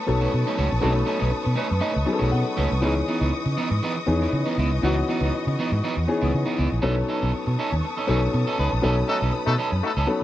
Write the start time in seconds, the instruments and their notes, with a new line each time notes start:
Already playing: grand piano F#3 B3 C#4 D#4 A4, string section B4 A5 C#6 D#6
0.07 fingered electric bass B1, grand piano F#3 B3 C#4 D#4 A4, muted clean electric guitar stroke
0.21 clean electric guitar A3 C#4 F#4
0.34 fingered electric bass B2, muted clean electric guitar stroke
0.47 clean electric guitar A3 C#4 D#4
0.57 fingered electric bass C#2, clean electric guitar A3 C#4 F#4
0.71 fingered electric bass A#1, muted clean electric guitar stroke
0.81 fingered electric bass B1, grand piano F#3 B3 C#4 D#4 A4, clean electric guitar A3 C#4 D#4
0.95 muted clean electric guitar stroke
1.06 clean electric guitar A3 C#4 D#4
1.19 fingered electric bass B1, clean electric guitar A3 C#4 D#4
1.31 muted clean electric guitar stroke
1.44 fingered electric bass B2, muted clean electric guitar stroke
1.56 clean electric guitar A3 C#4 D#4, grand piano B4
1.69 fingered electric bass F#2, muted clean electric guitar stroke
1.80 clean electric guitar A3 C#4 D#4, grand piano D#5
1.94 fingered electric bass C#2, muted clean electric guitar stroke
2.06 grand piano F#3 B3 C#4 D#4 G#4, muted clean electric guitar stroke
2.13 grand piano A4
2.19 fingered electric bass B1, clean electric guitar A3 C#4 F#4
2.31 fingered electric bass B2, grand piano F#5, muted clean electric guitar stroke
2.45 muted clean electric guitar stroke
2.57 fingered electric bass C#2, clean electric guitar A3 C#4 F#4
2.71 fingered electric bass C2, muted clean electric guitar stroke
2.81 fingered electric bass C#2, grand piano E3 B3 C#4 D#4 G#4, clean electric guitar E3 B3 D#4, string section D#5
2.96 muted clean electric guitar stroke
3.08 clean electric guitar E3 B3 D#4
3.20 fingered electric bass C#2, clean electric guitar E3 B3 D#4
3.33 muted clean electric guitar stroke
3.46 fingered electric bass C#3, muted clean electric guitar stroke
3.57 clean electric guitar E3 B3 D#4
3.70 fingered electric bass G#2, muted clean electric guitar stroke
3.83 clean electric guitar E3 B3 D#4
3.97 muted clean electric guitar stroke
4.06 fingered electric bass E2, grand piano D#3 B3 C#4 D#4 G#4, muted clean electric guitar stroke
4.12 grand piano E3
4.22 clean electric guitar E3 B3 E4
4.33 fingered electric bass C#3, muted clean electric guitar stroke
4.46 clean electric guitar E3 B3 D#4
4.58 fingered electric bass C#2, clean electric guitar E3 B3 E4
4.71 fingered electric bass C2, muted clean electric guitar stroke
4.82 fingered electric bass C#2, grand piano E3 B3 C#4 D#4 F#4, clean electric guitar E3 B3 D#4
4.97 muted clean electric guitar stroke
5.09 clean electric guitar E3 B3 D#4
5.21 fingered electric bass C#2, clean electric guitar E3 B3 D#4
5.33 muted fingered electric bass stroke, muted clean electric guitar stroke
5.47 fingered electric bass C#3, muted clean electric guitar stroke
5.59 clean electric guitar E3 B3 D#4
5.72 fingered electric bass G#2, muted clean electric guitar stroke
5.84 clean electric guitar E3 B3 D#4
5.97 fingered electric bass E2, muted clean electric guitar stroke
6.08 grand piano E3 B3 C#4 D#4 G#4, muted clean electric guitar stroke
6.21 fingered electric bass C#2, clean electric guitar E3 B3 E4
6.34 fingered electric bass C#3
6.46 clean electric guitar E3 B3 D#4
6.57 fingered electric bass C#2, clean electric guitar E3 B3 E4
6.71 fingered electric bass A#1, muted clean electric guitar stroke
6.82 fingered electric bass B1, grand piano F#3 B3 C#4 D4 A4, clean electric guitar C#4 D#4 A4, string section B4 A5 C#6 D#6
6.89 grand piano D#4
6.97 muted clean electric guitar stroke
7.09 clean electric guitar C#4 D#4 A4
7.21 fingered electric bass B1, clean electric guitar C#4 D#4 A4
7.33 muted clean electric guitar stroke
7.47 fingered electric bass B2, muted clean electric guitar stroke
7.59 clean electric guitar C#4 D#4 A4
7.72 fingered electric bass D#2, muted clean electric guitar stroke
7.85 muted clean electric guitar stroke
7.97 clean electric guitar C#4 D#4 A4
8.07 fingered electric bass B1, grand piano F#3 B3 C#4 D#4 A4, clean electric guitar C#4 D#4 A4
8.22 muted clean electric guitar stroke
8.34 fingered electric bass B2, muted clean electric guitar stroke
8.47 clean electric guitar C#4 D#4 A4
8.58 fingered electric bass C#2, clean electric guitar C#4 D#4 B4
8.72 fingered electric bass A#1, muted clean electric guitar stroke
8.82 fingered electric bass B1, grand piano F#3 B3 C#4 D#4 A4, clean electric guitar C#4 D#4 A4, string section B5
8.97 muted clean electric guitar stroke
9.08 horn section A3 D#4 F#4 A4, clean electric guitar C#4 D#4 A4
9.22 fingered electric bass B1, clean electric guitar C#4 D#4 A4
9.33 muted clean electric guitar stroke
9.47 fingered electric bass B2, horn section A3 D#4 F#4 A4, muted clean electric guitar stroke
9.58 clean electric guitar C#4 D#4 A4
9.72 fingered electric bass F#2, muted clean electric guitar stroke
9.83 horn section A3 D#4 F#4 A4, muted clean electric guitar stroke
9.97 fingered electric bass C#2, clean electric guitar C#4 D#4 A4
10.07 grand piano F#3 B3 C#4 D#4 A4, muted clean electric guitar stroke